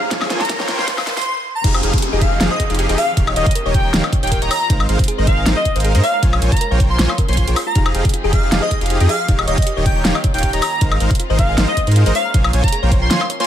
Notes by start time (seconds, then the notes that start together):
Already playing: A#2 F3 G#3 C#4 C5, riser
0.02 A#5
0.11 A#3 F4 C5 C#5 G#5, kick, snare, closed hi-hat
0.21 F5, snare, high woodblock
0.30 A#3 F4 C5 C#5 G#5, snare, closed hi-hat
0.40 C#5 A#5, snare, closed hi-hat
0.45 closed hi-hat
0.49 A#4, kick, snare, closed hi-hat
0.60 A#3 F4 C5 C#5 G5, snare
0.68 C#5, snare, closed hi-hat
0.79 A#5 C6, snare
0.87 A#3 F4 C6, kick, snare, closed hi-hat
0.98 F5, snare, high woodblock
1.07 A#4, snare, closed hi-hat
1.17 F4 C6, snare, closed hi-hat
1.22 closed hi-hat
1.26 C6
1.55 A#5
1.64 F1 F3 C4 D#4 G4 G#4 F5, kick, closed hi-hat, crash, downlifter
1.74 C5, high woodblock
1.83 F1 F3 D#4 G4 G#4 F5, closed hi-hat
1.93 G#4, kick, closed hi-hat
1.98 closed hi-hat
2.02 G4, closed hi-hat
2.13 F1 F3 D#4 G4 G#4 D#5
2.21 G#4 F5, kick, closed hi-hat
2.32 F5
2.41 F1 F3 D#4 G4 G#4 F5, snare, closed hi-hat
2.51 C5 D#5
2.60 G#4, kick, closed hi-hat
2.70 F1 F3 D#4 G4 G#4 F5, closed hi-hat
2.75 closed hi-hat
2.79 G4, closed hi-hat
2.89 F1 F3 D#4 G4 G#4 D#5, closed hi-hat
2.98 G#4 F5, open hi-hat
3.08 F5
3.17 D#1 D#3 A#3 C#4 D#4 F4 G4 C#5 F5, kick, closed hi-hat
3.27 D#5, high woodblock
3.36 D#1 D#3 D#4 G4 C#5 D#5 F5, closed hi-hat
3.46 C#5 D#5, kick, closed hi-hat
3.51 closed hi-hat
3.55 A#4, closed hi-hat
3.65 D#1 D#3 D#4 G4 C#5 D#5
3.74 C#5 G5, kick, closed hi-hat
3.85 A#5
3.93 D#1 D#3 D#4 G4 C#5 F5, snare, closed hi-hat
4.04 D#5, high woodblock
4.12 C#5, kick, closed hi-hat
4.23 D#1 D#3 D#4 G4 C#5 F5 G5, closed hi-hat
4.27 closed hi-hat
4.32 A#4 G5, kick, closed hi-hat
4.42 D#1 D#3 D#4 G4 C#5 D#5 A#5, closed hi-hat
4.51 C#5, open hi-hat, high woodblock
4.61 A#5
4.70 G#1 G#3 C4 D#4 A#4 C5 F5, kick, closed hi-hat
4.80 D#5, high woodblock
4.89 G#1 G#3 D#4 A#4 C5 F5, closed hi-hat
4.99 C5, kick, closed hi-hat
5.04 closed hi-hat
5.08 G#4, closed hi-hat
5.18 G#1 G#3 D#4 A#4 C5 D#5
5.27 C5 F5, kick, closed hi-hat
5.37 G#5
5.46 G#1 G#3 D#4 A#4 C5 F5, snare, closed hi-hat
5.56 D#5
5.65 C5, kick, closed hi-hat
5.76 G#1 G#3 D#4 A#4 C5 F5, closed hi-hat
5.80 closed hi-hat
5.84 G#4, closed hi-hat
5.95 G#2 G#3 D#4 A#4 C5 D#5, closed hi-hat
6.03 A#3 C#4 C#5 F5, open hi-hat
6.14 A#5
6.23 A#1 A#3 F4 C5 C#5 G#5, kick, closed hi-hat
6.33 F5, high woodblock
6.42 A#1 A#3 F4 C5 C#5 G#5, closed hi-hat
6.52 C#5 A#5, kick, closed hi-hat
6.57 closed hi-hat
6.61 A#4, closed hi-hat
6.71 A#1 A#3 F4 C5 C#5 G5
6.80 C#5, kick, closed hi-hat
6.90 A#5 C6
6.99 A#1 A#3 F4 C5 C#5 G#5 C6, snare, closed hi-hat
7.09 F5, high woodblock
7.18 A#4, kick, closed hi-hat
7.28 A#1 A#3 F4 C5 C#5 G#5 C6, closed hi-hat
7.33 closed hi-hat
7.37 F4 C6, kick, closed hi-hat
7.47 A#1 A#3 F4 G#4 C5 C#5 G5, closed hi-hat
7.56 F4, open hi-hat, high woodblock
7.67 F4 A#5
7.75 F1 F3 C4 D#4 G4 G#4 F5, kick, closed hi-hat
7.86 C5, high woodblock
7.95 F1 F3 D#4 G4 G#4 F5, closed hi-hat
8.05 G#4, kick, closed hi-hat
8.09 closed hi-hat
8.14 F4, closed hi-hat
8.24 F1 F3 D#4 G4 G#4 D#5
8.33 G#4 F5, kick, closed hi-hat
8.43 F5
8.52 F1 F3 D#4 G4 G#4 F5, snare, closed hi-hat
8.62 C5 D#5
8.71 G#4, kick, closed hi-hat
8.81 F1 F3 D#4 G4 G#4 F5, closed hi-hat
8.86 closed hi-hat
8.90 F4, closed hi-hat
9.00 F2 F3 D#4 G4 G#4 D#5, closed hi-hat
9.09 G#4 F5, open hi-hat
9.20 F5
9.28 D#1 D#3 A#3 C#4 D#4 F4 G4 C#5 F5, kick, closed hi-hat
9.39 D#5, high woodblock
9.47 D#1 D#3 D#4 G4 C#5 D#5 F5, closed hi-hat
9.58 C#5 D#5, kick, closed hi-hat
9.62 closed hi-hat
9.67 G4, closed hi-hat
9.77 D#1 D#3 D#4 G4 C#5 D#5
9.86 C#5 G5, kick, closed hi-hat
9.96 A#5
10.05 D#1 D#3 D#4 G4 C#5 F5, snare, closed hi-hat
10.15 D#5, high woodblock
10.24 C#5, kick, closed hi-hat
10.34 D#1 D#3 D#4 G4 C#5 F5 G5, closed hi-hat
10.38 closed hi-hat
10.43 G4 G5, kick, closed hi-hat
10.53 D#1 D#3 D#4 G4 C#5 D#5 A#5, closed hi-hat
10.62 C#5, open hi-hat, high woodblock
10.72 A#5
10.81 G#1 G#3 C4 D#4 F4 A#4 C5 F5, kick, closed hi-hat
10.92 D#5, high woodblock
11.00 G#1 G#3 D#4 A#4 C5 F5, closed hi-hat
11.11 C5, kick, closed hi-hat
11.15 closed hi-hat
11.20 F4, closed hi-hat
11.30 G#1 G#3 D#4 A#4 C5 D#5
11.39 C5 F5, kick, closed hi-hat
11.49 G#5
11.58 G#1 G#3 D#4 A#4 C5 F5, snare, closed hi-hat
11.68 D#5
11.77 C5, kick, closed hi-hat
11.87 G#2 G#3 D#4 A#4 C5 F5, closed hi-hat
11.92 closed hi-hat
11.96 F4, closed hi-hat
12.06 G#1 G#3 D#4 A#4 C5 D#5, closed hi-hat
12.15 A#3 C#4 C#5 F5, open hi-hat
12.25 A#5
12.34 A#1 A#3 F4 C5 C#5 G#5, kick, closed hi-hat
12.44 F5, high woodblock
12.53 A#1 A#3 F4 C5 C#5 G#5, closed hi-hat
12.63 C#5 A#5, kick, closed hi-hat
12.68 closed hi-hat
12.72 G#4, closed hi-hat
12.83 A#1 A#3 F4 C5 C#5 G5
12.92 C#5, kick, closed hi-hat
13.02 A#5 C6
13.11 A#3 F4 C5 C#5 G#5 C6, snare, closed hi-hat
13.21 F5, high woodblock
13.30 C#5, closed hi-hat
13.40 A#3 F4 C5 C#5 G#5 C6, closed hi-hat